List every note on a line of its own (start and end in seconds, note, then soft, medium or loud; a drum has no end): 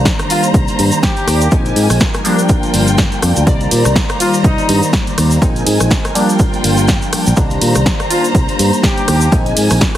0.00 1.47 D#3 loud
0.00 1.47 G3 medium
0.00 1.48 A#3 medium
0.00 1.48 D4 loud
0.00 1.50 C5 medium
0.00 1.50 A#5 medium
0.05 kick loud
0.05 snare loud
0.05 closed hi-hat medium
0.05 shaker medium
0.05 shaker soft
0.19 cross-stick medium
0.19 closed hi-hat soft
0.19 shaker soft
0.30 0.45 F4 loud
0.30 open hi-hat loud
0.30 shaker medium
0.43 closed hi-hat soft
0.43 shaker medium
0.43 shaker soft
0.54 0.65 C2 medium
0.54 kick loud
0.54 closed hi-hat medium
0.54 shaker medium
0.54 shaker soft
0.68 closed hi-hat soft
0.68 shaker soft
0.79 0.89 G2 loud
0.79 open hi-hat loud
0.79 shaker medium
0.92 closed hi-hat soft
0.92 shaker medium
0.93 shaker soft
1.03 1.58 G4 medium
1.03 kick loud
1.03 snare loud
1.03 closed hi-hat medium
1.03 shaker medium
1.03 shaker soft
1.16 closed hi-hat soft
1.16 shaker soft
1.27 1.47 D#2 medium
1.27 cross-stick medium
1.27 open hi-hat loud
1.27 shaker medium
1.41 closed hi-hat soft
1.41 shaker medium
1.41 shaker soft
1.51 1.71 A#1 loud
1.51 2.21 F3 medium
1.51 2.21 G#3 medium
1.51 2.21 C4 medium
1.51 2.21 D#4 medium
1.51 3.45 A#4 medium
1.51 2.24 G#5 medium
1.51 kick loud
1.51 closed hi-hat medium
1.51 shaker medium
1.51 shaker soft
1.65 closed hi-hat soft
1.65 shaker soft
1.76 1.87 G#2 medium
1.76 open hi-hat loud
1.76 shaker medium
1.90 1.98 A#1 loud
1.90 cross-stick medium
1.90 open hi-hat medium
1.90 shaker medium
1.90 shaker soft
2.00 kick loud
2.00 snare loud
2.00 closed hi-hat medium
2.00 shaker medium
2.00 shaker soft
2.14 cross-stick medium
2.14 closed hi-hat soft
2.14 shaker soft
2.24 3.42 F3 medium
2.24 3.43 G3 medium
2.24 3.43 A#3 medium
2.24 3.43 D4 loud
2.24 3.46 F4 medium
2.24 3.46 G5 medium
2.24 open hi-hat loud
2.24 shaker medium
2.38 closed hi-hat soft
2.38 shaker medium
2.38 shaker soft
2.49 kick loud
2.49 closed hi-hat medium
2.49 shaker medium
2.49 shaker soft
2.63 closed hi-hat soft
2.63 shaker soft
2.74 3.07 G1 medium
2.74 open hi-hat loud
2.74 shaker medium
2.87 closed hi-hat soft
2.87 shaker medium
2.87 shaker soft
2.98 kick loud
2.98 snare loud
2.98 closed hi-hat medium
2.98 shaker medium
2.98 shaker soft
3.12 closed hi-hat soft
3.12 shaker soft
3.22 3.33 F2 loud
3.22 cross-stick medium
3.22 open hi-hat loud
3.22 shaker medium
3.36 3.45 D2 medium
3.36 closed hi-hat soft
3.36 shaker medium
3.36 shaker soft
3.46 5.38 D#3 loud
3.46 5.38 G3 medium
3.46 5.38 A#3 medium
3.46 5.40 C5 medium
3.46 5.38 D5 loud
3.46 5.40 A#5 medium
3.46 kick loud
3.46 closed hi-hat medium
3.46 shaker medium
3.46 shaker soft
3.61 closed hi-hat soft
3.61 shaker soft
3.71 3.82 A#2 medium
3.71 open hi-hat loud
3.71 ride medium
3.71 shaker medium
3.85 3.93 C2 loud
3.85 cross-stick medium
3.85 closed hi-hat soft
3.85 shaker medium
3.85 shaker soft
3.96 kick loud
3.96 snare loud
3.96 closed hi-hat medium
3.96 shaker medium
3.96 shaker soft
4.09 cross-stick medium
4.09 closed hi-hat soft
4.09 shaker soft
4.20 4.35 F4 loud
4.20 open hi-hat loud
4.20 ride medium
4.20 shaker medium
4.34 closed hi-hat soft
4.34 shaker medium
4.34 shaker soft
4.44 4.55 C2 medium
4.44 4.83 D#4 loud
4.44 kick loud
4.44 closed hi-hat medium
4.44 shaker medium
4.44 shaker soft
4.58 closed hi-hat soft
4.58 shaker soft
4.69 4.80 G2 loud
4.69 open hi-hat loud
4.69 ride medium
4.69 shaker medium
4.82 closed hi-hat soft
4.82 shaker medium
4.82 shaker soft
4.93 kick loud
4.93 snare loud
4.93 closed hi-hat medium
4.93 shaker medium
4.93 shaker soft
5.07 closed hi-hat soft
5.07 shaker soft
5.18 5.37 D#2 medium
5.18 cross-stick medium
5.18 open hi-hat loud
5.18 ride medium
5.18 shaker medium
5.31 closed hi-hat soft
5.31 shaker medium
5.32 shaker soft
5.42 5.61 A#1 loud
5.42 6.11 F3 medium
5.42 6.11 G#3 medium
5.42 6.11 C4 medium
5.42 6.12 D#4 medium
5.42 7.36 A#4 medium
5.42 6.15 G#5 medium
5.42 kick loud
5.42 closed hi-hat medium
5.42 shaker medium
5.42 shaker soft
5.56 closed hi-hat soft
5.56 shaker soft
5.67 5.77 G#2 medium
5.67 open hi-hat loud
5.67 ride medium
5.67 shaker medium
5.80 5.89 A#1 loud
5.80 cross-stick medium
5.80 closed hi-hat soft
5.80 shaker medium
5.80 shaker soft
5.90 kick loud
5.90 snare loud
5.90 closed hi-hat medium
5.90 shaker medium
5.90 shaker soft
6.05 cross-stick medium
6.05 closed hi-hat soft
6.05 shaker soft
6.14 7.32 F3 medium
6.14 7.33 G3 medium
6.14 7.33 A#3 medium
6.14 7.33 D4 loud
6.14 7.37 F4 medium
6.14 7.37 G5 medium
6.14 open hi-hat loud
6.14 ride medium
6.14 shaker medium
6.29 closed hi-hat soft
6.29 shaker medium
6.29 shaker soft
6.39 kick loud
6.39 closed hi-hat medium
6.39 shaker medium
6.39 shaker soft
6.53 closed hi-hat soft
6.53 shaker soft
6.64 6.97 G1 medium
6.64 open hi-hat loud
6.64 ride medium
6.64 shaker medium
6.77 closed hi-hat soft
6.77 shaker medium
6.79 shaker soft
6.88 kick loud
6.88 snare loud
6.88 closed hi-hat medium
6.88 shaker medium
6.88 shaker soft
7.02 closed hi-hat soft
7.02 shaker soft
7.13 muted fingered electric bass stroke soft
7.13 cross-stick medium
7.13 open hi-hat loud
7.13 ride medium
7.13 shaker medium
7.26 7.35 A#1 medium
7.26 closed hi-hat soft
7.26 shaker medium
7.26 shaker soft
7.36 9.28 D#3 loud
7.36 9.28 G3 medium
7.36 9.28 A#3 medium
7.36 9.29 D4 loud
7.36 9.31 C5 medium
7.36 9.31 A#5 medium
7.36 kick loud
7.36 closed hi-hat medium
7.36 shaker medium
7.36 shaker soft
7.51 closed hi-hat soft
7.51 shaker soft
7.61 7.72 A#2 medium
7.61 open hi-hat loud
7.61 ride medium
7.61 shaker medium
7.75 7.84 C2 loud
7.75 cross-stick medium
7.75 closed hi-hat soft
7.75 shaker medium
7.75 shaker soft
7.86 kick loud
7.86 snare loud
7.86 closed hi-hat medium
7.86 shaker medium
7.86 shaker soft
8.00 cross-stick medium
8.00 closed hi-hat soft
8.00 shaker soft
8.11 8.25 F4 loud
8.11 open hi-hat loud
8.11 ride medium
8.11 shaker medium
8.24 closed hi-hat soft
8.24 shaker medium
8.24 shaker soft
8.35 8.45 C2 loud
8.35 kick loud
8.35 closed hi-hat medium
8.35 shaker soft
8.35 shaker medium
8.49 closed hi-hat soft
8.49 shaker soft
8.59 8.70 G2 loud
8.59 open hi-hat loud
8.59 ride medium
8.59 shaker medium
8.73 closed hi-hat soft
8.73 shaker medium
8.73 shaker soft
8.83 9.38 G4 medium
8.83 kick loud
8.83 snare loud
8.83 closed hi-hat medium
8.83 shaker medium
8.83 shaker soft
8.97 closed hi-hat soft
8.97 shaker soft
9.08 9.28 D#2 medium
9.08 cross-stick medium
9.08 open hi-hat loud
9.08 ride medium
9.08 shaker medium
9.21 closed hi-hat soft
9.21 shaker medium
9.22 shaker soft
9.32 9.52 A#1 loud
9.32 9.98 F3 medium
9.32 9.98 G#3 medium
9.32 9.98 C4 medium
9.32 9.98 D#4 loud
9.32 9.98 A#4 medium
9.32 9.98 G#5 medium
9.32 kick loud
9.32 closed hi-hat medium
9.32 shaker medium
9.32 shaker soft
9.46 closed hi-hat soft
9.46 shaker soft
9.57 9.68 G#2 medium
9.57 open hi-hat loud
9.57 ride medium
9.57 shaker medium
9.70 9.79 A#1 loud
9.70 cross-stick medium
9.70 open hi-hat medium
9.70 shaker medium
9.70 shaker soft
9.81 kick loud
9.81 snare loud
9.81 closed hi-hat medium
9.81 shaker soft
9.81 shaker medium